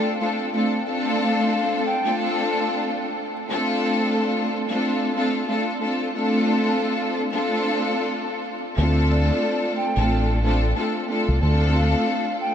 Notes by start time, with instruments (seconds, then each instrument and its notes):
Already playing: string section A3 C4 D4 F4 A4
0.20 string section A3 C4 D4 F4 A4
0.52 string section A3 C4 D4 F4 A4
0.86 string section A3 C4 D4 F4 A4
1.21 flute F5
1.86 flute G5
2.04 string section A3 C4 D4 F4 A4
2.51 flute A5
3.49 string section A3 C4 D4 F4 A4
4.68 string section A3 C4 D4 F4 A4
5.14 string section A3 C4 D4 F4 A4
5.48 string section A3 C4 D4 F4 A4
5.80 string section A3 C4 D4 F4 A4
6.14 string section A3 C4 D4 F4 A4
7.32 string section A3 C4 D4 F4 A4
8.77 fingered electric bass D2, string section A3 C4 D4 F4 A4
9.10 flute D5
9.77 flute G5
9.96 fingered electric bass A1, string section A3 C4 D4 F4 A4
10.42 string section A3 C4 D4 F4 A4
10.75 string section A3 C4 D4 F4 A4
11.07 string section A3 C4 D4 F4 A4
11.28 fingered electric bass C2
11.41 fingered electric bass D2, string section A3 C4 D4 F4 A4
11.75 flute F5
12.41 flute G5